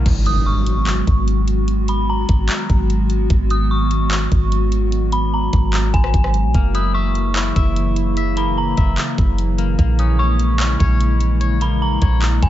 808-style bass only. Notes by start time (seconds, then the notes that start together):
0.06 G#1
1.07 G#1
2.29 G#1
2.70 G#1
3.30 G#1
4.32 G#1
5.53 G#1
5.94 G#1
6.14 G#1
6.44 A#1
6.54 F#1
7.56 F#1
8.78 F#1
9.18 F#1
9.79 A#1
10.80 A#1
12.02 A#1
12.43 A#1